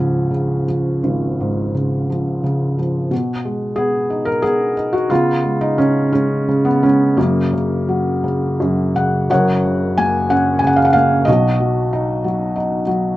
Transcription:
0.00 1.01 C#2 medium
0.00 0.64 G#2 soft
0.00 0.29 C#3 soft
0.00 0.68 F3 soft
0.00 0.64 C#4 medium
0.31 1.71 C#3 soft
0.68 2.06 F3 soft
1.03 3.07 G#1 soft
1.40 2.74 G#2 soft
1.75 2.42 C#3 soft
2.10 2.77 F3 soft
2.44 3.09 C#3 soft
2.78 3.11 F3 soft
3.11 5.06 B2 soft
3.45 4.73 G#3 soft
3.76 4.42 B3 soft
3.76 4.28 G#4 medium
4.10 4.75 D#4 soft
4.25 4.43 A#4 medium
4.42 5.09 B3 soft
4.42 4.95 G#4 medium
4.77 5.10 D#4 soft
4.93 5.11 F#4 medium
5.10 5.78 C#3 medium
5.10 6.10 B3 medium
5.10 5.58 F4 medium
5.44 6.12 G#3 soft
5.61 5.77 D#4 medium
5.78 6.47 C#3 soft
5.78 6.11 C#4 medium
6.13 6.82 G#3 soft
6.13 6.67 C#4 medium
6.48 7.16 C#3 soft
6.65 6.83 B3 medium
6.83 7.17 G#3 soft
6.83 7.19 C#4 medium
7.17 8.59 F#2 medium
7.17 7.52 C#3 soft
7.17 8.91 A#3 medium
7.53 8.22 C#3 soft
7.89 9.26 F#3 soft
8.24 8.94 C#3 soft
8.60 9.28 F#2 soft
8.96 9.29 C#3 soft
8.96 9.29 F#5 medium
9.30 11.23 F#1 soft
9.30 11.23 F#2 medium
9.30 10.27 A#4 medium
9.30 10.27 C#5 medium
9.30 10.00 F#5 medium
9.65 10.62 C#3 soft
9.98 10.94 A#3 soft
9.98 10.31 G#5 medium
10.30 11.24 C#4 soft
10.30 10.61 F#5 medium
10.59 10.68 G#5 medium
10.64 11.26 C#3 medium
10.64 10.77 F#5 medium
10.76 10.86 F5 medium
10.85 10.94 F#5 medium
10.93 11.27 A#3 soft
10.93 11.24 F5 medium
11.25 13.14 B1 medium
11.25 13.13 B2 medium
11.25 12.82 F#4 medium
11.25 12.81 D#5 medium
11.60 12.23 F#3 soft
11.93 12.54 D#4 medium
12.24 12.86 F#3 soft
12.56 13.16 D#4 medium
12.87 13.17 F#3 medium

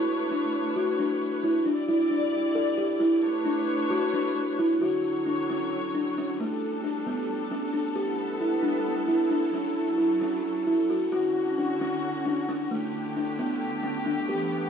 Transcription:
0.00 1.63 A3 medium
0.00 1.63 D4 medium
0.00 0.22 E4 medium
0.00 1.63 B4 medium
0.00 1.63 C#5 medium
0.31 0.67 D4 medium
0.76 0.94 F#4 medium
0.99 1.35 D4 medium
1.44 1.62 E4 medium
1.66 3.21 G3 medium
1.66 1.84 D4 medium
1.66 3.21 E4 medium
1.66 3.21 D5 medium
1.88 2.06 E4 medium
2.11 2.46 D4 medium
2.55 2.73 A4 medium
2.77 2.95 G4 medium
3.00 3.36 E4 medium
3.22 4.80 A3 medium
3.22 4.80 D4 medium
3.22 4.80 B4 medium
3.22 4.80 C#5 medium
3.45 3.82 D4 medium
3.90 4.09 F#4 medium
4.13 4.50 D4 medium
4.59 4.77 E4 medium
4.81 6.39 D3 medium
4.81 6.39 F#3 medium
4.81 5.18 F#4 medium
4.81 6.39 C#5 medium
5.26 5.45 D4 medium
5.50 5.86 C#4 medium
5.95 6.13 D4 medium
6.18 6.36 C#4 medium
6.40 7.94 G3 medium
6.40 6.76 A3 medium
6.40 7.95 D4 medium
6.40 11.09 A4 medium
6.84 7.02 D4 medium
7.07 7.42 B3 medium
7.51 7.69 C#4 medium
7.73 7.91 D4 medium
7.95 9.51 G3 medium
7.95 9.51 B3 medium
7.95 11.09 E4 medium
7.95 8.32 G4 medium
8.41 8.59 E4 medium
8.63 8.99 D4 medium
9.08 9.26 E4 medium
9.30 9.48 D4 medium
9.53 11.11 F#3 medium
9.53 9.90 C#4 medium
9.98 10.16 E4 medium
10.21 10.58 C#4 medium
10.67 10.85 E4 medium
10.90 11.08 F#4 medium
11.11 12.69 D3 medium
11.11 12.69 C#4 medium
11.11 12.69 F#4 medium
11.11 11.49 F#4 medium
11.58 11.76 D4 medium
11.81 12.17 C#4 medium
12.26 12.44 D4 medium
12.49 12.67 C#4 medium
12.71 14.27 D3 medium
12.71 13.07 A3 medium
12.71 14.70 A3 medium
12.71 14.70 G4 medium
13.16 13.34 D4 medium
13.39 13.75 B3 medium
13.83 14.01 C#4 medium
14.06 14.24 D4 medium
14.28 14.70 E3 medium
14.28 14.70 B3 medium
14.28 14.65 G4 medium

